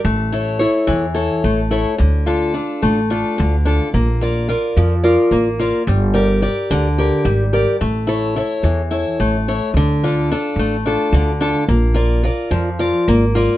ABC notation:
X:1
M:7/8
L:1/8
Q:1/4=108
K:Dm
V:1 name="Steel-string acoustic guitar"
A, [EA^c] [EAc] E, [EAc] A, [EAc] | D, [DFA] [DFA] A, [DFA] D, [DFA] | B, [FBd] [FBd] F, [FBd] B, [FBd] | G, [GBd] [GBd] D, [GBd] G, [GBd] |
A, [EA^c] [EAc] E, [EAc] A, [EAc] | D, [DFA] [DFA] A, [DFA] D, [DFA] | B, [FBd] [FBd] F, [FBd] B, [FBd] |]
V:2 name="Upright bass" clef=bass
A,,,3 E,,2 A,,,2 | D,,3 A,,,2 D,,2 | B,,,3 F,,2 A,,,2 | G,,,3 D,,2 ^G,,,2 |
A,,,3 E,,2 A,,,2 | D,,3 A,,,2 D,,2 | B,,,3 F,,2 ^G,,,2 |]